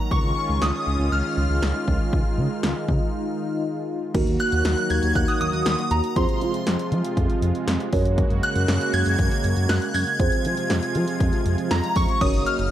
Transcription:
Already playing: analog synth pad D#3, synth bell A#5
0.11 analog synth bass C#2, analog synth pad G#3 C#4 F4, synth bell C#6, kick
0.24 analog synth bass C#2
0.49 analog synth bass C#2
0.62 analog synth bass C#2, synth bell D#6, snare
0.87 analog synth bass C#2
0.99 analog synth bass C#2
1.12 analog synth bass C#2, synth bell F6
1.37 analog synth bass C#2
1.50 analog synth bass C#2
1.62 analog synth bass C#2, snare
1.88 analog synth bass C#2, kick
2.13 analog synth bass C#2, analog synth pad D#4, kick
2.38 analog synth bass C#3
2.63 analog synth bass C#2, snare
2.89 analog synth bass C#3, kick
4.14 analog synth bass D#2, analog synth pad D#3 F#3 A#3 F#4, synth keys A#3 D#4 F#4 A#4, kick, closed hi-hat, crash
4.27 analog synth bass D#2, closed hi-hat
4.40 synth bell F#6, closed hi-hat
4.52 analog synth bass D#2, closed hi-hat
4.65 analog synth bass D#2, snare, closed hi-hat
4.78 closed hi-hat
4.90 analog synth bass D#2, synth bell G#6, closed hi-hat
5.03 analog synth bass D#2, closed hi-hat
5.15 analog synth bass D#2, synth bell F#6, kick, closed hi-hat
5.28 synth bell D#6, closed hi-hat
5.41 analog synth bass D#2, synth bell D#6, closed hi-hat
5.53 analog synth bass D#2, closed hi-hat
5.66 analog synth bass D#2, snare, closed hi-hat
5.79 closed hi-hat
5.91 analog synth bass D#2, synth bell A#5, closed hi-hat
6.04 closed hi-hat
6.16 analog synth bass F2, analog synth pad C3 F3 G#3 F4, synth keys C4 F4 G#4 C5, synth bell C6, kick, closed hi-hat
6.29 closed hi-hat
6.41 analog synth bass F3, closed hi-hat
6.54 closed hi-hat
6.67 analog synth bass F2, snare, closed hi-hat
6.79 closed hi-hat
6.92 analog synth bass F3, closed hi-hat
7.04 closed hi-hat
7.17 analog synth bass F2, kick, closed hi-hat
7.30 closed hi-hat
7.42 analog synth bass F2, closed hi-hat
7.55 closed hi-hat
7.67 analog synth bass F2, snare, closed hi-hat
7.80 closed hi-hat
7.93 analog synth bass F#2, analog synth pad C#3 A#3 F#4, synth keys C#4 F#4 A#4 C#5, kick, open hi-hat
8.05 closed hi-hat
8.18 kick, closed hi-hat
8.30 analog synth bass F#2, closed hi-hat
8.43 synth bell F#6, closed hi-hat
8.56 analog synth bass F#2, closed hi-hat
8.68 analog synth bass F#2, snare, closed hi-hat
8.81 closed hi-hat
8.94 analog synth bass F#2, synth bell G#6, closed hi-hat
9.06 analog synth bass F#2, closed hi-hat
9.19 analog synth bass F#2, kick, closed hi-hat
9.31 closed hi-hat
9.44 analog synth bass F#2, closed hi-hat
9.57 analog synth bass F#2, closed hi-hat
9.69 analog synth bass F#2, synth bell F#6, snare, closed hi-hat
9.82 closed hi-hat
9.94 analog synth bass F#2, synth bell G#6, open hi-hat
10.07 closed hi-hat
10.19 analog synth bass F2, analog synth pad C3 F3 G#3 F4, synth keys C4 F4 G#4 C5, kick, closed hi-hat
10.32 closed hi-hat
10.45 analog synth bass F3, closed hi-hat
10.57 closed hi-hat
10.70 analog synth bass F2, snare, closed hi-hat
10.83 closed hi-hat
10.95 analog synth bass F3, closed hi-hat
11.08 closed hi-hat
11.20 analog synth bass F2, kick, closed hi-hat
11.33 closed hi-hat
11.46 analog synth bass F2, closed hi-hat
11.58 closed hi-hat
11.71 analog synth bass F2, synth bell A#5, snare, closed hi-hat
11.84 closed hi-hat
11.96 analog synth bass F2, synth bell C#6, kick, open hi-hat
12.09 closed hi-hat
12.21 analog synth bass F#1, analog synth pad C#3 F#3 A#3 D#4, synth keys C#4 F#4 A#4 C#5, synth bell D#6, kick, closed hi-hat, crash
12.34 analog synth bass F#1, closed hi-hat
12.46 synth bell F6, closed hi-hat
12.59 analog synth bass F#1, closed hi-hat

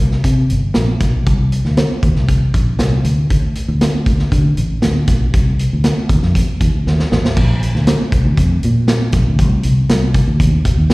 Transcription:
0.00 fingered electric bass C2
0.11 snare
0.24 fingered electric bass C3, kick, closed hi-hat
0.50 fingered electric bass G1, closed hi-hat
0.74 fingered electric bass A#1, snare, closed hi-hat
1.00 fingered electric bass B1, kick, snare, closed hi-hat
1.26 fingered electric bass C2, kick, closed hi-hat
1.52 closed hi-hat
1.65 fingered electric bass D2, snare
1.77 snare, closed hi-hat
2.03 fingered electric bass D#2, kick, closed hi-hat
2.16 fingered electric bass C2, snare
2.29 kick, closed hi-hat
2.54 fingered electric bass A#1, kick, closed hi-hat
2.79 fingered electric bass C2, snare, closed hi-hat
3.04 fingered electric bass D2, closed hi-hat
3.30 kick, closed hi-hat
3.55 closed hi-hat
3.68 fingered electric bass D2
3.81 snare, closed hi-hat
4.06 fingered electric bass D2, kick, closed hi-hat
4.19 snare
4.32 fingered electric bass D3, kick, closed hi-hat
4.57 fingered electric bass A1, closed hi-hat
4.82 fingered electric bass D2, snare, closed hi-hat
5.07 fingered electric bass B1, kick, snare, closed hi-hat
5.34 fingered electric bass C2, kick, closed hi-hat
5.59 closed hi-hat
5.73 fingered electric bass D2
5.84 snare, closed hi-hat
6.09 fingered electric bass D#2, kick, closed hi-hat
6.22 fingered electric bass F2, snare
6.35 kick, closed hi-hat
6.61 fingered electric bass D#2, kick, closed hi-hat
6.74 fingered electric bass D2
6.87 fingered electric bass D#2, snare
6.99 snare
7.12 fingered electric bass A1, snare
7.25 snare
7.37 fingered electric bass A#1, kick, crash
7.63 closed hi-hat
7.75 fingered electric bass D2, snare
7.87 snare, closed hi-hat
8.12 fingered electric bass C2, kick, closed hi-hat
8.25 fingered electric bass D2
8.37 fingered electric bass F2, kick, closed hi-hat
8.63 fingered electric bass A#2, closed hi-hat
8.88 snare, closed hi-hat
9.12 fingered electric bass A#1, kick, snare, closed hi-hat
9.27 fingered electric bass D2
9.39 fingered electric bass C2, kick, closed hi-hat
9.63 fingered electric bass C2, closed hi-hat
9.89 fingered electric bass C2, snare, closed hi-hat
10.14 kick, closed hi-hat
10.28 fingered electric bass D2
10.40 fingered electric bass D#2, kick, closed hi-hat
10.65 kick, closed hi-hat
10.77 fingered electric bass D#2
10.90 fingered electric bass D#1, snare, closed hi-hat

